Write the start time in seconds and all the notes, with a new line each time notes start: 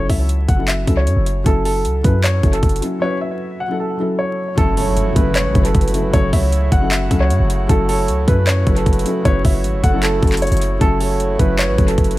Already playing: F#3 C#4 E4 A4
0.09 C#2 E5, kick, open hi-hat
0.29 closed hi-hat
0.48 F#1 F#5, kick, closed hi-hat
0.56 F#3 C#4 E4 A4
0.68 E5, clap, closed hi-hat
0.85 C#2 F#3 C#4 E4 A4, kick, closed hi-hat
0.97 C#5
1.07 F#2, closed hi-hat
1.17 F#1
1.26 closed hi-hat
1.44 F#1 F#3 C#4 E4 A4, kick, closed hi-hat
1.65 A4, open hi-hat
1.85 C#2, closed hi-hat
2.03 F#2 F#3 C#4 E4 A4 B4, kick, closed hi-hat
2.24 C#5, clap, closed hi-hat
2.42 F#1 F#3 C#4 E4 A4, kick, closed hi-hat
2.53 A4, closed hi-hat
2.63 F#1, kick, closed hi-hat
2.69 closed hi-hat
2.76 closed hi-hat
2.81 F#3 C#4 E4 A4, closed hi-hat
3.00 F#3 C#4 E4 B4 C#5
3.21 E5
3.60 F#5
3.68 F#3 C#4 E4 A4
3.80 A4
3.97 F#3 C#4 E4 A4
4.19 C#5
4.55 F#1 C#3 F#3 A3 C#4 E4 F#4 A4, kick, closed hi-hat, impact
4.77 A4 C#5, open hi-hat
4.97 closed hi-hat
5.14 F#1 F#3 C#4 E4 A4 B4, kick, closed hi-hat
5.36 C#5, clap, closed hi-hat
5.45 A1
5.52 F#1 F#3 C#4 E4 A4, kick, closed hi-hat
5.65 A4, closed hi-hat
5.75 F#1, kick, closed hi-hat
5.81 closed hi-hat
5.88 closed hi-hat
5.92 F#3 C#4 E4 A4, closed hi-hat
6.11 F#1 F#3 C#4 E4 A4 C#5, kick, closed hi-hat
6.33 C#2 C#5 E5, kick, open hi-hat
6.52 closed hi-hat
6.72 F#1 F#5, kick, closed hi-hat
6.80 F#3 C#4 E4 A4
6.91 E5, clap, closed hi-hat
7.09 C#2 F#3 C#4 E4 A4, kick, closed hi-hat
7.20 C#5
7.30 F#2, closed hi-hat
7.40 F#1
7.50 closed hi-hat
7.68 F#1 F#3 C#4 E4 A4, kick, closed hi-hat
7.89 A4 C#5, open hi-hat
8.08 C#2, closed hi-hat
8.26 F#2 F#3 C#4 E4 A4 B4, kick, closed hi-hat
8.47 C#5, clap, closed hi-hat
8.65 F#1 F#3 C#4 E4 A4, kick, closed hi-hat
8.76 A4, closed hi-hat
8.86 F#1, kick, closed hi-hat
8.93 closed hi-hat
8.99 closed hi-hat
9.04 F#3 C#4 E4 A4, closed hi-hat
9.23 F#1 F#3 C#4 E4 B4 C#5, kick, closed hi-hat
9.45 F#1 C#5 E5, kick, open hi-hat
9.64 G#1, closed hi-hat
9.74 F#1
9.83 F#1 A4 F#5, kick, closed hi-hat
9.92 F#3 C#4 E4 A4
10.03 A4, clap, closed hi-hat
10.21 F#1 F#3 C#4 E4 A4, kick, closed hi-hat
10.27 closed hi-hat
10.32 clap, closed hi-hat
10.37 closed hi-hat
10.42 C#5, closed hi-hat
10.47 closed hi-hat
10.52 F#1, closed hi-hat
10.57 closed hi-hat
10.62 closed hi-hat
10.79 F#1 F#3 C#4 E4 F#4 A4, kick, closed hi-hat
11.00 A4 C#5, open hi-hat
11.20 closed hi-hat
11.38 F#1 F#3 C#4 E4 A4 B4, kick, closed hi-hat
11.59 C#5, clap, closed hi-hat
11.69 A1
11.76 F#1 F#3 C#4 E4 A4, kick, closed hi-hat
11.88 A4, closed hi-hat
11.98 F#1, kick, closed hi-hat
12.04 closed hi-hat
12.11 closed hi-hat
12.16 F#3